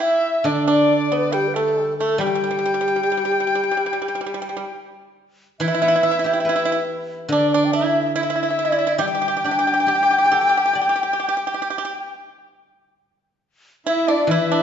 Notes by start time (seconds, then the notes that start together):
0.00 E4 E5
0.44 D3 D4 D5
0.67 D4 D5
1.12 B3 B4
1.32 G3 G4 G5
1.48 B4
1.55 A3 A4
1.82 G3
1.97 A3 A4
2.18 G3 G4 G5
2.27 G3
2.35 G3
2.44 G3
2.51 G3
2.59 G3
2.66 G3
2.74 G3
2.81 G3
2.88 G3
2.96 G3
3.03 G3
3.12 G3
3.17 G3
3.25 G3
3.31 G3
3.40 G3
3.47 G3
3.55 G3
3.64 G3
3.71 G3
3.77 G3
3.86 G3
3.93 G3
4.02 G3
4.08 G3
4.15 G3
4.21 G3
4.27 G3
4.34 G3
4.42 G3
4.49 G3
4.57 G3
5.60 E3 E4 E5
5.68 E4
5.75 E4
5.82 B3 E4
5.88 E4
5.96 E4
6.03 E4
6.11 E4
6.19 E4
6.24 E4 G4
6.33 E4
6.40 E4
6.45 B4 E5
6.49 E4
6.56 E4
6.65 E4
6.72 E4
7.29 D3 D4 D5
7.51 D4 D5
7.65 G5
7.73 E4 E5
8.15 E4 E5
8.23 E4
8.30 E4
8.36 E4
8.43 E4
8.50 E4
8.58 E4 D5
8.65 E4
8.72 E4
8.79 E4
8.87 E4
8.98 G3 G4 G5
9.08 G4
9.15 G4
9.22 G4
9.28 G4
9.37 G4
9.44 D4 G4
9.51 G4
9.59 G4
9.67 G4
9.74 G4
9.80 G4
9.86 G4
9.95 G4
10.03 G4
10.11 G4
10.18 G4
10.26 G4
10.31 G4 A4
10.41 G4
10.49 G4
10.57 G4
10.66 G4
10.73 G4 D5
10.81 G4
10.89 G4
10.96 G4
11.03 G4
11.13 G4
11.20 G4
11.29 G4
11.37 G4
11.47 G4
11.54 G4
11.62 G4
11.70 G4
11.78 G4
11.85 G4
13.86 E4 E5
14.08 D4 D5
14.27 E3 E4 E5
14.31 E4 E5
14.52 D4 D5